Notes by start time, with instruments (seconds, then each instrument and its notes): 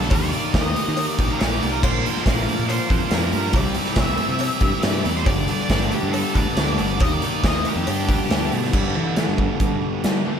Already playing: distorted electric guitar G2 D3 G3, overdriven electric guitar B3 D4, twelve-string acoustic guitar A4, lead electric guitar A4
0.01 snare
0.10 picked electric bass D#2, overdriven electric guitar D#3 G3 A#3 D#4 G4, lead electric guitar D5, kick, open hi-hat, cowbell
0.31 overdriven electric guitar D#3 G3 A#3 D#4 G4, open hi-hat
0.54 picked electric bass D#2, overdriven electric guitar D#3 G3 A#3 D#4 G4, lead electric guitar D#5, kick, snare, open hi-hat, cowbell
0.74 overdriven electric guitar D#3 G3 A#3 D#4 G4, open hi-hat
0.88 picked electric bass D#3
0.96 overdriven electric guitar D#3 G3 A#3 D#4 G4, open hi-hat, cowbell
1.10 lead electric guitar D5
1.19 picked electric bass A#1, overdriven electric guitar D#3 G3 A#3 D#4 G4, kick, open hi-hat
1.32 lead electric guitar A#4
1.39 picked electric bass A#1, overdriven electric guitar D#3 G3 A#3 D#4 G4, lead electric guitar D5, snare, open hi-hat, cowbell
1.62 picked electric bass C2, overdriven electric guitar D#3 G3 A#3 D#4 G4, open hi-hat
1.72 lead electric guitar A#4
1.81 picked electric bass A#1, overdriven electric guitar A#2 D3 F3 A#3 D4 A#4, twelve-string acoustic guitar C4 F4, lead electric guitar C5, kick, crash, cowbell
2.03 overdriven electric guitar A#2 D3 F3 A#3 D4 A#4, twelve-string acoustic guitar C4 F4, open hi-hat
2.17 snare
2.24 picked electric bass A#1, overdriven electric guitar A#2 D3 F3 A#3 D4 A#4, twelve-string acoustic guitar C4 F4, lead electric guitar D5, kick, snare, open hi-hat, cowbell
2.46 overdriven electric guitar A#2 D3 F3 A#3 D4 A#4, twelve-string acoustic guitar C4 F4, open hi-hat
2.59 picked electric bass A#2
2.67 overdriven electric guitar A#2 D3 F3 A#3 D4 A#4, twelve-string acoustic guitar C4 F4, lead electric guitar C5, open hi-hat, cowbell
2.89 picked electric bass F2, overdriven electric guitar A#2 D3 F3 A#3 D4 A#4, twelve-string acoustic guitar C4 F4, kick, open hi-hat
3.11 picked electric bass F2, overdriven electric guitar A#2 D3 F3 A#3 D4 A#4, twelve-string acoustic guitar C4 F4, lead electric guitar A#4, snare, open hi-hat, cowbell
3.32 picked electric bass G2, overdriven electric guitar A#2 D3 F3 A#3 D4 A#4, twelve-string acoustic guitar C4 F4, open hi-hat
3.53 picked electric bass C2, overdriven electric guitar C3 G3 C4 E4 G4, twelve-string acoustic guitar E3 D4, kick, open hi-hat, cowbell
3.58 lead electric guitar D5
3.74 overdriven electric guitar C3 G3 C4 E4 G4, open hi-hat
3.78 twelve-string acoustic guitar D4
3.85 snare
3.93 picked electric bass C2, overdriven electric guitar C3 G3 C4 E4 G4, lead electric guitar D5, kick, snare, open hi-hat
3.98 twelve-string acoustic guitar E3 D4, lead electric guitar E5, cowbell
4.17 overdriven electric guitar C3 G3 C4 E4 G4, twelve-string acoustic guitar D4, open hi-hat
4.22 twelve-string acoustic guitar G3
4.29 picked electric bass C3
4.38 overdriven electric guitar C3 G3 C4 E4 G4, twelve-string acoustic guitar E3 D4, open hi-hat, cowbell
4.60 picked electric bass G2, overdriven electric guitar C3 G3 C4 E4 G4, twelve-string acoustic guitar D4, kick, open hi-hat
4.81 picked electric bass G2, overdriven electric guitar C3 G3 C4 E4 G4, twelve-string acoustic guitar E3 D4, lead electric guitar D5, snare, open hi-hat, cowbell
5.03 picked electric bass E2, overdriven electric guitar C3 G3 C4 E4 G4, twelve-string acoustic guitar D4, open hi-hat
5.17 lead electric guitar C5, snare
5.25 picked electric bass G1, overdriven electric guitar G2 D3 G3 B3 D4 G4, twelve-string acoustic guitar A4, lead electric guitar D5, kick, open hi-hat, cowbell
5.47 overdriven electric guitar G2 D3 G3 B3 D4 G4, twelve-string acoustic guitar A4, open hi-hat
5.69 picked electric bass G1, overdriven electric guitar G2 D3 G3 B3 D4 G4, twelve-string acoustic guitar A4, kick, snare, open hi-hat, cowbell
5.91 overdriven electric guitar G2 D3 G3 B3 D4 G4, lead electric guitar G4, twelve-string acoustic guitar A4, open hi-hat
6.03 picked electric bass G2
6.12 overdriven electric guitar G2 D3 G3 B3 D4, lead electric guitar A4, twelve-string acoustic guitar A4, open hi-hat, cowbell
6.16 overdriven electric guitar G4
6.34 picked electric bass D2, overdriven electric guitar G2 D3 G3 B3 D4 G4, twelve-string acoustic guitar A4, lead electric guitar D5, kick, open hi-hat
6.57 picked electric bass D2, overdriven electric guitar G2 D3 G3 B3 D4 G4, twelve-string acoustic guitar A4, snare, open hi-hat, cowbell
6.78 picked electric bass G1, overdriven electric guitar G2 D3 G3 B3 D4 G4, twelve-string acoustic guitar A4, lead electric guitar D5, open hi-hat
7.00 picked electric bass D#2, overdriven electric guitar D#3 G3 A#3 D#4 G4, lead electric guitar D#5, kick, open hi-hat, cowbell
7.11 lead electric guitar D5
7.21 overdriven electric guitar D#3 G3 A#3 D#4 G4, open hi-hat
7.43 picked electric bass D#2, overdriven electric guitar D#3 G3 A#3 D#4 G4, lead electric guitar D#5, kick, snare, open hi-hat, cowbell
7.65 overdriven electric guitar D#3 G3 A#3 D#4 G4, lead electric guitar G4, open hi-hat
7.76 picked electric bass F2
7.86 overdriven electric guitar G2 D3 G3 B3 D4 G4, picked electric bass G2, open hi-hat, cowbell
7.91 twelve-string acoustic guitar A4
8.07 picked electric bass D2, overdriven electric guitar G2 D3 G3 B3 D4 G4, twelve-string acoustic guitar A4, kick, open hi-hat
8.12 twelve-string acoustic guitar B3
8.27 picked electric bass D2, overdriven electric guitar G2 D3 G3 B3 D4 G4, open hi-hat, cowbell
8.31 twelve-string acoustic guitar B3 A4, snare
8.49 overdriven electric guitar G2 D3 G3 B3 D4 G4, picked electric bass B2, twelve-string acoustic guitar A4, open hi-hat
8.64 snare
8.71 overdriven electric guitar G2 D3 G3 B3 D4 G4, picked electric bass G2, twelve-string acoustic guitar A4, kick, crash
8.76 distorted electric guitar D3 G3
8.94 picked electric bass E3, twelve-string acoustic guitar D4 A4
9.15 twelve-string acoustic guitar G3 B3 D4 A4, snare, closed hi-hat
9.28 picked electric bass G2
9.37 twelve-string acoustic guitar B3 D4 A4, kick
9.60 picked electric bass G2, twelve-string acoustic guitar G3 B3 D4 A4, kick, closed hi-hat
9.81 twelve-string acoustic guitar B3 D4 A4
10.02 twelve-string acoustic guitar G3 B3 D4 A4, picked electric bass G3, snare, closed hi-hat
10.25 distorted electric guitar G2 D3 G3, twelve-string acoustic guitar B3 D4 A4